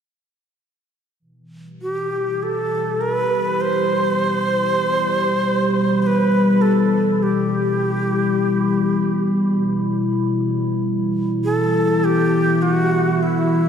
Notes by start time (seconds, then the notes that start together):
1.20 B2 E3
1.49 G3
1.65 E4 G4
1.82 G4
1.98 B5
2.43 A4
3.01 B4
3.61 C5
6.02 C5
6.06 B4
6.61 A4
7.23 G4
11.44 A4
11.76 E5
11.81 A4
12.04 G4
12.62 F#4
13.23 E4